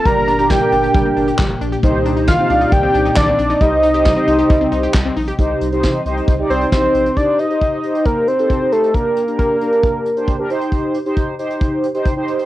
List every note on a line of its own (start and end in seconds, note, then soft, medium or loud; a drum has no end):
0.00 1.80 A#3 medium
0.05 0.58 G1 loud
0.05 3.57 A#2 medium
0.05 0.15 G3 medium
0.05 0.34 D4 medium
0.05 0.34 G4 medium
0.05 1.81 G4 medium
0.05 0.34 A#4 medium
0.05 0.52 A#5 loud
0.05 kick loud
0.05 closed hi-hat medium
0.28 0.38 D4 medium
0.28 closed hi-hat medium
0.39 0.58 D4 medium
0.39 0.58 G4 medium
0.39 0.49 G4 medium
0.39 0.58 A#4 medium
0.39 closed hi-hat medium
0.50 0.60 G3 medium
0.50 1.61 G5 loud
0.50 kick loud
0.50 snare loud
0.61 0.71 A#3 medium
0.61 1.38 D4 medium
0.61 1.38 G4 medium
0.61 1.38 A#4 medium
0.72 0.88 G1 loud
0.72 0.82 D4 medium
0.72 closed hi-hat medium
0.83 0.93 G4 medium
0.83 closed hi-hat medium
0.94 1.10 G1 loud
0.94 1.04 G3 medium
0.94 kick loud
0.94 closed hi-hat medium
1.05 1.15 A#3 medium
1.17 1.32 G1 loud
1.17 1.27 D4 medium
1.17 closed hi-hat medium
1.28 1.38 G4 medium
1.28 closed hi-hat medium
1.39 1.54 G1 loud
1.39 1.49 G3 medium
1.39 kick loud
1.39 snare loud
1.39 clap loud
1.50 1.60 A#3 medium
1.61 1.77 A#1 medium
1.61 1.71 D4 medium
1.61 closed hi-hat medium
1.72 1.82 G4 medium
1.72 closed hi-hat medium
1.83 2.36 C2 loud
1.83 1.93 D#3 loud
1.83 3.59 C4 medium
1.83 5.35 D#4 medium
1.83 2.31 D#4 medium
1.83 2.31 G4 medium
1.83 2.31 C5 loud
1.83 kick loud
1.83 closed hi-hat medium
2.05 2.15 D4 medium
2.05 closed hi-hat medium
2.17 2.27 D#4 medium
2.17 closed hi-hat medium
2.28 2.38 D#3 medium
2.28 2.74 F5 loud
2.28 kick loud
2.28 snare loud
2.39 2.49 C4 medium
2.39 2.48 D#4 medium
2.39 2.48 G4 medium
2.39 2.48 C5 medium
2.50 2.66 C2 loud
2.50 2.60 D4 medium
2.50 3.27 D#4 medium
2.50 3.27 G4 medium
2.50 3.27 D5 medium
2.50 closed hi-hat medium
2.61 2.71 D#4 medium
2.61 closed hi-hat medium
2.72 2.88 C2 loud
2.72 2.82 D#3 medium
2.72 3.16 G5 loud
2.72 kick loud
2.72 closed hi-hat medium
2.83 2.93 C4 medium
2.94 3.10 C2 loud
2.94 3.04 D4 medium
2.94 closed hi-hat medium
3.05 3.16 D#4 medium
3.05 closed hi-hat medium
3.17 3.32 C2 loud
3.17 3.27 D#3 medium
3.17 3.63 D5 loud
3.17 kick loud
3.17 snare loud
3.17 clap loud
3.28 3.38 C4 medium
3.39 3.54 A#1 loud
3.39 3.49 D4 medium
3.39 closed hi-hat medium
3.50 3.60 D#4 medium
3.50 closed hi-hat medium
3.61 4.14 C2 loud
3.61 5.37 C3 medium
3.61 5.37 G3 medium
3.61 3.71 G3 loud
3.61 3.90 D#4 medium
3.61 3.90 G4 medium
3.61 3.90 C5 medium
3.61 5.17 D#5 loud
3.61 kick loud
3.61 closed hi-hat medium
3.83 3.93 D#4 medium
3.83 closed hi-hat medium
3.94 4.14 D#4 medium
3.94 4.04 G4 medium
3.94 4.14 G4 medium
3.94 4.14 C5 medium
3.94 closed hi-hat medium
4.05 4.15 G3 medium
4.05 kick loud
4.05 snare loud
4.17 4.27 C4 medium
4.17 4.93 D#4 medium
4.17 4.93 G4 medium
4.17 4.93 C5 loud
4.28 4.43 C2 loud
4.28 4.38 D#4 medium
4.28 closed hi-hat medium
4.39 4.49 G4 medium
4.39 closed hi-hat medium
4.50 4.66 C2 loud
4.50 4.60 G3 medium
4.50 kick loud
4.50 closed hi-hat medium
4.61 4.71 C4 medium
4.72 4.88 C2 loud
4.72 4.82 D#4 medium
4.72 closed hi-hat medium
4.83 4.93 G4 medium
4.83 closed hi-hat medium
4.94 5.10 C2 loud
4.94 5.04 G3 medium
4.94 kick loud
4.94 snare loud
4.94 clap loud
5.06 5.16 C4 medium
5.17 5.32 A#1 medium
5.17 5.27 D#4 medium
5.17 open hi-hat medium
5.28 5.38 G4 medium
5.28 closed hi-hat medium
5.39 5.54 C2 loud
5.39 7.15 C3 medium
5.39 7.15 G3 medium
5.39 5.68 D#4 medium
5.39 7.15 D#4 medium
5.39 5.68 G4 medium
5.39 5.68 C5 loud
5.39 kick loud
5.39 closed hi-hat medium
5.61 5.84 C2 loud
5.61 closed hi-hat medium
5.72 6.01 D#4 medium
5.72 6.01 G4 medium
5.72 6.01 C5 loud
5.72 closed hi-hat medium
5.83 kick loud
5.83 snare loud
6.05 6.21 C2 loud
6.05 6.34 D#4 medium
6.05 6.34 G4 medium
6.05 6.34 C5 loud
6.05 closed hi-hat medium
6.17 closed hi-hat medium
6.27 6.43 C2 loud
6.27 kick loud
6.27 closed hi-hat medium
6.39 6.68 D#4 medium
6.39 6.68 G4 medium
6.39 6.68 D5 medium
6.50 6.65 C2 loud
6.50 6.71 C5 loud
6.50 closed hi-hat medium
6.61 closed hi-hat medium
6.72 6.88 A#1 medium
6.72 7.11 D#4 medium
6.72 7.11 G4 medium
6.72 7.11 C5 loud
6.72 7.18 C5 loud
6.72 kick loud
6.72 snare loud
6.94 7.10 A#1 medium
6.94 closed hi-hat medium
7.06 closed hi-hat medium
7.17 7.45 D#4 medium
7.17 7.45 G4 medium
7.17 7.45 C5 medium
7.17 7.41 D5 loud
7.17 kick medium
7.17 closed hi-hat medium
7.39 8.07 D#5 loud
7.39 closed hi-hat medium
7.50 7.79 D#4 medium
7.50 7.79 G4 medium
7.50 7.79 C5 medium
7.50 closed hi-hat soft
7.61 kick loud
7.61 closed hi-hat medium
7.83 8.31 D#4 medium
7.83 8.31 G4 medium
7.83 8.31 C5 medium
7.83 closed hi-hat medium
7.95 closed hi-hat medium
8.05 8.29 A#4 medium
8.05 kick loud
8.05 closed hi-hat medium
8.28 8.74 C5 loud
8.28 closed hi-hat medium
8.39 8.58 D#4 medium
8.39 8.58 G4 medium
8.39 8.58 A4 medium
8.39 closed hi-hat soft
8.50 kick loud
8.50 closed hi-hat medium
8.61 8.90 D#4 medium
8.61 8.90 G4 medium
8.61 8.90 C5 medium
8.72 8.96 A4 medium
8.72 closed hi-hat medium
8.83 closed hi-hat medium
8.94 9.23 D4 medium
8.94 9.23 G4 medium
8.94 9.38 A#4 loud
8.94 9.23 A#4 medium
8.94 kick medium
8.94 closed hi-hat medium
9.16 closed hi-hat medium
9.28 9.57 D4 medium
9.28 9.57 G4 medium
9.28 9.57 A#4 medium
9.28 closed hi-hat soft
9.39 10.46 A#4 medium
9.39 kick medium
9.39 closed hi-hat medium
9.61 10.09 D4 medium
9.61 10.09 G4 medium
9.61 10.09 A#4 medium
9.61 closed hi-hat medium
9.72 closed hi-hat medium
9.83 kick loud
9.83 closed hi-hat medium
10.05 closed hi-hat medium
10.16 10.36 D4 medium
10.16 10.36 G4 medium
10.16 10.36 C5 medium
10.16 closed hi-hat soft
10.27 kick loud
10.27 closed hi-hat medium
10.39 10.50 D4 medium
10.39 10.49 G4 medium
10.39 10.50 A#4 loud
10.50 10.98 D#4 medium
10.50 10.98 G4 medium
10.50 10.98 C5 loud
10.50 closed hi-hat medium
10.61 closed hi-hat medium
10.72 kick medium
10.72 closed hi-hat medium
10.94 closed hi-hat medium
11.05 11.34 D#4 medium
11.05 11.34 G4 medium
11.05 11.34 C5 loud
11.05 closed hi-hat medium
11.17 kick loud
11.17 closed hi-hat medium
11.39 11.87 D#4 medium
11.39 11.87 G4 medium
11.39 11.87 C5 loud
11.39 closed hi-hat medium
11.50 closed hi-hat medium
11.61 kick loud
11.61 closed hi-hat medium
11.83 closed hi-hat medium
11.94 12.14 D#4 medium
11.94 12.14 G4 medium
11.94 12.14 C5 loud
11.94 closed hi-hat soft
12.05 kick loud
12.05 closed hi-hat medium
12.16 12.45 D#4 medium
12.16 12.45 G4 medium
12.16 12.45 C5 loud
12.28 closed hi-hat medium
12.39 closed hi-hat medium